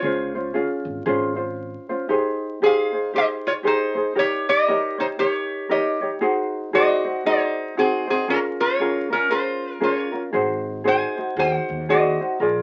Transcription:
0.00 0.57 C#2 loud
0.00 0.35 C#4 medium
0.00 1.55 F4 medium
0.00 0.35 G#4 medium
0.00 1.54 C#5 medium
0.04 0.35 F4 medium
0.04 0.34 C5 medium
0.35 0.53 C#4 soft
0.35 0.54 F4 soft
0.35 0.55 C5 medium
0.54 1.05 C#4 medium
0.54 1.06 F4 medium
0.54 1.05 G#4 medium
0.85 0.99 G#1 medium
1.06 1.73 G#1 loud
1.06 1.36 C#4 medium
1.06 1.36 F4 loud
1.06 1.38 G#4 medium
1.06 1.35 C5 medium
1.36 1.90 C#4 medium
1.36 1.89 F4 medium
1.36 1.89 C5 medium
1.89 2.09 C#4 soft
1.89 2.10 F4 medium
1.89 2.09 C5 medium
2.09 2.62 D#4 medium
2.09 2.61 G4 medium
2.09 2.61 G#4 medium
2.09 2.62 C5 medium
2.62 2.93 D#4 medium
2.62 2.93 G4 medium
2.62 2.93 G#4 medium
2.62 3.11 G#4 medium
2.62 2.91 C5 medium
2.66 3.17 F5 loud
2.93 3.13 D#4 soft
2.93 3.14 G#4 soft
2.93 3.13 C5 soft
3.13 3.64 D#4 medium
3.13 3.63 G4 medium
3.13 3.24 G4 medium
3.13 3.63 G#4 medium
3.13 3.64 C5 medium
3.18 3.26 D#5 loud
3.47 3.52 F4 medium
3.47 3.53 C#5 medium
3.63 3.96 D#4 medium
3.63 4.14 D#4 medium
3.63 3.95 G4 medium
3.63 3.95 G#4 medium
3.63 3.94 C5 medium
3.67 4.19 C5 medium
3.95 4.14 D#4 soft
3.95 4.16 G#4 soft
3.95 4.16 C5 medium
4.15 4.69 D#4 medium
4.15 4.68 G4 medium
4.15 4.67 A#4 medium
4.15 4.68 C#5 medium
4.15 4.50 C#5 loud
4.20 4.47 G4 medium
4.49 4.96 G4 medium
4.49 4.97 D#5 loud
4.68 4.99 D#4 medium
4.68 4.98 G4 medium
4.68 4.99 A#4 medium
4.68 4.97 C#5 medium
4.98 5.05 D#4 medium
4.98 5.18 D#4 soft
4.98 5.18 G4 medium
4.98 5.06 C5 medium
4.98 5.19 C#5 medium
5.18 5.70 D#4 medium
5.18 5.69 G4 medium
5.18 5.68 G4 medium
5.18 5.68 A#4 medium
5.18 5.72 C#5 medium
5.18 5.70 C#5 medium
5.69 6.02 D#4 medium
5.69 6.01 G4 medium
5.69 6.10 G4 medium
5.69 6.02 A#4 medium
5.69 6.00 C#5 loud
5.69 6.10 D#5 medium
6.01 6.20 D#4 soft
6.01 6.21 G4 medium
6.01 6.22 C#5 medium
6.21 6.72 D#4 loud
6.21 6.73 F#4 loud
6.21 6.73 G#4 medium
6.21 6.74 C5 loud
6.73 7.05 D#4 medium
6.73 7.05 F#4 medium
6.73 7.22 F#4 medium
6.73 7.05 G#4 medium
6.73 7.03 C5 medium
6.73 7.26 D#5 loud
7.05 7.25 D#4 soft
7.05 7.25 F#4 soft
7.05 7.25 C5 medium
7.25 7.76 D#4 medium
7.25 7.74 D#4 medium
7.25 7.76 F#4 medium
7.25 7.77 G#4 medium
7.25 7.79 C5 loud
7.25 7.77 C5 medium
7.77 8.07 C4 medium
7.77 8.08 D#4 medium
7.77 8.07 F#4 loud
7.77 8.08 G#4 medium
7.77 8.09 G#4 medium
7.77 8.06 C5 medium
8.07 8.28 C4 medium
8.07 8.28 D#4 soft
8.07 8.29 F#4 soft
8.07 8.30 G#4 medium
8.07 8.28 C5 medium
8.28 8.80 C#4 medium
8.28 8.38 C#4 medium
8.28 8.80 F4 medium
8.28 8.80 G#4 medium
8.28 8.80 A#4 medium
8.28 8.38 A#4 loud
8.60 9.08 F4 medium
8.60 9.13 C#5 loud
8.80 9.11 C#4 medium
8.80 9.10 F4 medium
8.80 9.11 G#4 medium
8.80 9.09 A#4 medium
9.10 9.30 C#4 soft
9.10 9.31 C#4 medium
9.10 9.30 F4 soft
9.10 9.30 A#4 medium
9.10 9.33 A#4 medium
9.30 9.80 C#4 medium
9.30 9.80 F4 medium
9.30 9.79 F4 medium
9.30 9.80 G#4 medium
9.30 9.80 A#4 medium
9.30 9.83 C5 medium
9.80 10.13 C#4 medium
9.80 10.12 F4 medium
9.80 10.22 F4 medium
9.80 10.13 G#4 medium
9.80 10.11 A#4 medium
9.80 10.22 C#5 medium
10.12 10.33 C#4 soft
10.12 10.33 F4 medium
10.12 10.33 A#4 medium
10.33 11.01 G#1 loud
10.33 10.84 D#4 medium
10.33 10.84 F#4 medium
10.33 10.84 G#4 medium
10.33 10.84 C5 medium
10.84 11.17 D#4 medium
10.84 11.17 F#4 medium
10.84 11.16 G#4 medium
10.84 11.16 C5 medium
10.84 11.35 C5 medium
10.88 11.40 G#5 loud
11.17 11.36 D#4 soft
11.17 11.36 F#4 soft
11.17 11.37 C5 medium
11.36 11.57 D#2 loud
11.36 11.89 D#4 medium
11.36 11.89 F#4 medium
11.36 11.89 G#4 medium
11.36 11.89 C5 medium
11.36 11.86 C5 medium
11.36 11.92 F#5 loud
11.70 12.16 D#2 loud
11.89 12.21 D#4 medium
11.89 12.20 F#4 medium
11.89 12.38 F#4 medium
11.89 12.20 G#4 medium
11.89 12.19 C5 medium
11.89 12.37 D#5 medium
12.20 12.41 D#4 soft
12.20 12.41 F#4 medium
12.20 12.41 C5 medium
12.40 12.62 A#1 medium
12.40 12.62 F4 medium
12.40 12.62 G#4 medium
12.40 12.62 A#4 medium
12.40 12.62 D5 medium

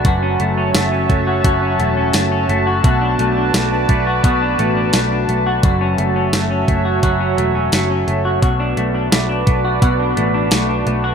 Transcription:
0.00 0.40 A3 medium
0.00 0.12 D4 medium
0.00 11.15 A5 medium
0.05 0.36 F#1 loud
0.05 1.43 F#2 medium
0.05 1.27 F#4 medium
0.05 5.60 F#4 medium
0.05 2.82 C#5 medium
0.05 2.82 E5 medium
0.05 kick loud
0.05 closed hi-hat medium
0.22 0.56 C#4 medium
0.40 0.71 F#1 loud
0.40 0.74 A3 medium
0.40 closed hi-hat soft
0.58 0.91 C#4 medium
0.74 1.06 F#1 loud
0.74 1.09 A3 medium
0.74 snare loud
0.74 closed hi-hat medium
0.74 tambourine medium
0.92 1.61 C#4 medium
1.09 1.40 F#1 loud
1.09 1.79 A3 medium
1.09 kick medium
1.09 closed hi-hat soft
1.27 1.44 F#4 medium
1.44 1.75 F#1 loud
1.44 2.84 F#2 medium
1.44 2.66 F#4 medium
1.44 kick medium
1.44 closed hi-hat medium
1.62 1.96 C#4 medium
1.79 2.10 E1 medium
1.79 2.14 A3 medium
1.79 closed hi-hat medium
1.97 2.30 C#4 medium
2.13 2.45 F#1 loud
2.13 2.49 A3 medium
2.13 snare loud
2.13 closed hi-hat medium
2.13 tambourine medium
2.32 2.91 C#4 medium
2.49 2.80 F#1 loud
2.49 3.19 A3 medium
2.49 closed hi-hat soft
2.67 2.84 F#4 medium
2.84 3.15 B1 medium
2.84 4.23 B2 medium
2.84 4.06 F#4 medium
2.84 5.61 B4 medium
2.84 5.61 D5 medium
2.84 kick loud
2.84 closed hi-hat medium
3.01 3.36 D4 medium
3.19 3.50 B1 loud
3.19 3.53 A3 medium
3.19 closed hi-hat soft
3.37 3.71 D4 medium
3.54 3.85 B1 loud
3.54 3.89 A3 medium
3.54 snare loud
3.54 closed hi-hat medium
3.54 tambourine medium
3.72 4.41 D4 medium
3.89 4.20 B1 medium
3.89 4.59 A3 medium
3.89 kick medium
3.89 closed hi-hat soft
4.07 4.25 F#4 medium
4.24 4.55 B1 loud
4.24 5.64 B2 medium
4.24 5.46 F#4 medium
4.24 kick medium
4.24 closed hi-hat medium
4.42 4.75 D4 medium
4.59 4.89 A1 medium
4.59 4.94 A3 medium
4.59 closed hi-hat medium
4.77 5.10 D4 medium
4.93 5.24 B1 loud
4.93 5.29 A3 medium
4.93 snare loud
4.93 closed hi-hat medium
4.93 tambourine medium
5.12 5.71 D4 medium
5.28 5.59 B1 loud
5.28 5.98 A3 medium
5.28 closed hi-hat soft
5.47 5.64 F#4 medium
5.63 5.94 F#1 loud
5.63 7.02 F#2 medium
5.63 8.40 F#4 medium
5.63 6.85 F#4 medium
5.63 8.40 C#5 medium
5.63 8.40 E5 medium
5.63 kick loud
5.63 closed hi-hat medium
5.81 6.15 C#4 medium
5.98 6.29 F#1 medium
5.98 6.33 A3 medium
5.98 closed hi-hat medium
6.16 6.49 C#4 medium
6.33 6.64 F#1 loud
6.33 6.68 A3 medium
6.33 snare loud
6.33 closed hi-hat medium
6.33 tambourine medium
6.51 7.19 C#4 medium
6.68 6.99 F#1 medium
6.68 7.37 A3 medium
6.68 kick medium
6.68 closed hi-hat soft
6.85 7.03 F#4 medium
7.03 7.34 F#1 medium
7.03 8.42 F#2 medium
7.03 8.25 F#4 medium
7.03 kick medium
7.03 closed hi-hat medium
7.20 7.54 C#4 medium
7.38 7.68 E1 loud
7.38 7.72 A3 medium
7.38 closed hi-hat medium
7.55 7.89 C#4 medium
7.72 8.03 F#1 loud
7.72 8.07 A3 medium
7.72 snare loud
7.72 closed hi-hat medium
7.72 tambourine medium
7.90 8.49 C#4 medium
8.07 8.38 F#1 medium
8.07 8.77 A3 medium
8.07 closed hi-hat soft
8.25 8.42 F#4 medium
8.42 8.73 B1 loud
8.42 9.81 B2 medium
8.42 11.15 F#4 medium
8.42 9.64 F#4 medium
8.42 11.15 B4 medium
8.42 11.15 D5 medium
8.42 kick loud
8.42 closed hi-hat medium
8.60 8.93 D4 medium
8.77 9.08 B1 loud
8.77 9.11 A3 medium
8.77 closed hi-hat medium
8.95 9.28 D4 medium
9.12 9.43 B1 medium
9.12 9.46 A3 medium
9.12 snare loud
9.12 closed hi-hat medium
9.12 tambourine medium
9.29 9.98 D4 medium
9.47 9.78 B1 medium
9.47 10.16 A3 medium
9.47 kick medium
9.47 closed hi-hat soft
9.65 9.82 F#4 medium
9.82 10.13 B1 loud
9.82 11.15 B2 medium
9.82 11.04 F#4 medium
9.82 kick medium
9.82 closed hi-hat medium
10.00 10.33 D4 medium
10.17 10.48 A1 medium
10.17 10.51 A3 medium
10.17 closed hi-hat soft
10.34 10.68 D4 medium
10.51 10.82 B1 loud
10.51 10.86 A3 medium
10.51 snare loud
10.51 closed hi-hat medium
10.51 tambourine medium
10.69 11.15 D4 medium
10.86 11.15 B1 loud
10.86 11.15 A3 medium
10.86 closed hi-hat soft
11.04 11.15 F#4 medium

